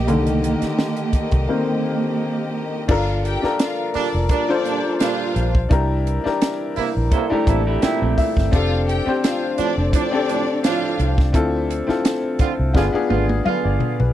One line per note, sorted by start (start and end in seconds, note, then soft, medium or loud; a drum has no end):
0.00 2.85 A#3 medium
0.00 2.85 G4 medium
0.00 2.85 D#5 medium
0.07 0.54 C2 loud
0.07 2.86 D3 medium
0.07 1.47 D#3 soft
0.07 1.47 A#3 soft
0.07 closed hi-hat medium
0.27 closed hi-hat soft
0.44 closed hi-hat medium
0.62 muted fingered electric bass stroke soft
0.62 snare soft
0.62 closed hi-hat soft
0.79 snare loud
0.97 closed hi-hat medium
1.13 muted fingered electric bass stroke soft
1.13 kick medium
1.13 closed hi-hat medium
1.31 1.46 C2 medium
1.31 kick medium
1.31 closed hi-hat soft
1.48 1.80 D#3 soft
1.48 1.80 A#3 soft
1.48 1.81 C4 soft
2.88 3.36 G1 medium
2.88 5.68 D3 medium
2.88 5.68 F3 medium
2.88 8.49 G3 medium
2.88 5.69 A#3 medium
2.88 3.35 D4 medium
2.88 3.36 F4 medium
2.88 3.17 F4 medium
2.88 5.68 F4 medium
2.88 3.36 A4 medium
2.88 3.37 A#4 medium
2.88 3.17 F5 loud
2.88 kick loud
2.88 crash medium
3.25 3.53 G4 medium
3.25 3.53 G5 loud
3.25 closed hi-hat medium
3.42 4.33 D4 medium
3.42 4.34 F4 medium
3.42 4.34 A4 medium
3.42 4.35 A#4 medium
3.42 muted fingered electric bass stroke soft
3.42 snare soft
3.59 3.88 F4 medium
3.59 3.88 F5 medium
3.59 snare loud
3.59 closed hi-hat loud
3.94 4.07 A#2 medium
3.94 4.07 G3 medium
3.94 4.07 D4 loud
3.94 4.24 D4 medium
3.94 4.24 D5 loud
3.94 muted fingered electric bass stroke soft
3.94 open hi-hat medium
4.14 4.28 F1 medium
4.29 4.42 A#2 medium
4.29 4.42 G3 medium
4.29 4.42 D4 medium
4.29 4.97 D4 loud
4.29 4.97 D5 loud
4.29 kick medium
4.29 closed hi-hat medium
4.48 5.55 D4 medium
4.48 5.56 F4 medium
4.48 5.56 A4 medium
4.48 5.57 C5 loud
4.65 4.82 A#2 medium
4.65 4.82 G3 medium
4.65 4.81 D4 medium
4.65 closed hi-hat medium
5.00 5.52 A#2 medium
5.00 5.52 G3 medium
5.00 5.52 D4 medium
5.00 5.52 F4 loud
5.00 5.51 F5 loud
5.00 snare loud
5.00 closed hi-hat medium
5.36 5.66 A#1 medium
5.36 closed hi-hat medium
5.55 kick medium
5.69 6.17 C2 loud
5.69 8.50 C3 medium
5.69 8.50 E3 medium
5.69 8.50 C4 medium
5.69 6.17 D4 medium
5.69 6.17 E4 medium
5.69 8.50 E4 medium
5.69 6.18 G4 medium
5.69 6.18 A#4 medium
5.69 kick loud
5.69 closed hi-hat medium
6.07 closed hi-hat medium
6.24 7.15 D4 medium
6.24 7.16 E4 medium
6.24 7.16 G4 medium
6.24 7.16 A#4 medium
6.24 muted fingered electric bass stroke soft
6.24 snare soft
6.42 snare loud
6.42 closed hi-hat medium
6.76 6.89 C3 medium
6.76 6.89 A#3 medium
6.76 6.89 E4 loud
6.76 muted fingered electric bass stroke soft
6.76 open hi-hat medium
6.97 7.10 A#1 medium
7.12 7.24 C3 medium
7.12 7.24 A#3 medium
7.12 7.24 E4 medium
7.12 7.30 A4 medium
7.12 7.30 C5 medium
7.12 kick medium
7.12 closed hi-hat medium
7.30 8.38 A3 loud
7.30 8.37 D4 medium
7.30 8.37 E4 medium
7.30 8.38 G4 medium
7.30 7.47 G4 medium
7.30 7.46 A#4 medium
7.30 muted fingered electric bass stroke soft
7.47 7.77 A1 medium
7.47 7.63 C3 medium
7.47 7.63 A#3 medium
7.47 7.63 E4 medium
7.47 7.65 A4 medium
7.47 7.80 A#5 medium
7.47 kick medium
7.47 closed hi-hat medium
7.67 7.81 E4 medium
7.67 7.82 G4 medium
7.82 8.34 A#2 medium
7.82 8.34 C3 medium
7.82 8.00 C4 medium
7.82 8.34 E4 medium
7.82 8.00 E4 medium
7.82 8.15 G5 medium
7.82 muted fingered electric bass stroke soft
7.82 snare loud
7.82 closed hi-hat medium
8.02 8.15 A#1 medium
8.02 8.51 A3 medium
8.02 8.50 C4 medium
8.18 8.50 E5 medium
8.18 kick medium
8.18 open hi-hat soft
8.37 8.51 G1 medium
8.37 kick medium
8.37 snare soft
8.51 8.99 F1 loud
8.51 14.12 D3 medium
8.51 11.31 F3 medium
8.51 12.71 A3 medium
8.51 8.99 C4 medium
8.51 12.71 C4 medium
8.51 8.99 D4 medium
8.51 14.12 D4 medium
8.51 8.81 F4 loud
8.51 8.99 G4 medium
8.51 9.00 A4 loud
8.51 8.81 F5 loud
8.51 kick loud
8.51 closed hi-hat medium
8.87 9.16 G4 medium
8.87 9.16 G5 loud
8.87 closed hi-hat medium
9.05 9.97 C4 medium
9.05 9.97 D4 medium
9.05 9.98 G4 medium
9.05 9.98 C5 medium
9.05 muted fingered electric bass stroke soft
9.23 9.51 F4 medium
9.23 9.52 F5 medium
9.23 snare loud
9.23 closed hi-hat medium
9.58 9.70 A2 medium
9.58 9.70 F3 medium
9.58 9.70 D4 loud
9.58 9.87 D4 medium
9.58 9.86 D5 loud
9.58 muted fingered electric bass stroke soft
9.58 closed hi-hat medium
9.78 9.91 F1 medium
9.93 10.05 A2 medium
9.93 10.05 F3 medium
9.93 10.06 D4 medium
9.93 10.60 D4 loud
9.93 10.60 D5 loud
9.93 kick medium
9.93 closed hi-hat medium
10.11 11.18 C4 medium
10.11 11.19 D4 medium
10.11 11.19 G4 medium
10.11 11.20 A4 medium
10.29 10.45 A2 medium
10.29 10.45 F3 medium
10.29 10.45 D4 medium
10.29 closed hi-hat medium
10.63 11.15 A2 medium
10.63 11.15 F3 medium
10.63 11.15 D4 medium
10.63 11.15 F4 loud
10.63 11.14 F5 loud
10.63 snare loud
10.63 closed hi-hat medium
11.00 11.34 C2 medium
11.00 closed hi-hat medium
11.18 kick medium
11.18 snare soft
11.33 11.81 D2 loud
11.33 12.74 F3 medium
11.33 11.80 C4 medium
11.33 11.81 E4 medium
11.33 11.81 F4 medium
11.33 11.81 A4 medium
11.33 kick loud
11.33 closed hi-hat medium
11.71 closed hi-hat medium
11.87 12.74 C4 medium
11.87 12.75 E4 medium
11.87 12.74 F4 medium
11.87 12.75 A4 medium
11.87 muted fingered electric bass stroke soft
11.87 snare soft
12.05 snare loud
12.05 closed hi-hat loud
12.39 12.52 D3 medium
12.39 12.52 C4 medium
12.39 12.52 F4 medium
12.39 muted fingered electric bass stroke soft
12.39 kick medium
12.39 closed hi-hat medium
12.59 12.73 C2 medium
12.74 12.91 G1 loud
12.74 12.87 D3 medium
12.74 14.13 G3 medium
12.74 14.13 G#3 medium
12.74 12.91 B3 medium
12.74 12.87 B3 medium
12.74 14.13 B3 medium
12.74 12.91 D4 medium
12.74 12.87 F4 medium
12.74 12.92 F4 medium
12.74 12.92 G#4 medium
12.74 kick medium
12.74 snare medium
12.92 14.00 B3 medium
12.92 14.01 D4 medium
12.92 14.01 F4 medium
12.92 14.01 G#4 loud
12.92 muted fingered electric bass stroke soft
13.10 13.40 G#1 medium
13.10 13.26 D3 medium
13.10 13.26 B3 medium
13.10 13.26 F4 medium
13.10 high tom medium
13.29 high tom medium
13.45 13.97 D3 medium
13.45 13.97 B3 medium
13.45 13.97 F4 medium
13.45 13.63 F5 medium
13.45 muted fingered electric bass stroke soft
13.45 mid tom medium
13.65 13.79 G1 medium
13.65 13.98 D5 medium
13.80 floor tom medium
14.00 14.13 B1 medium
14.00 14.13 B4 medium
14.00 floor tom loud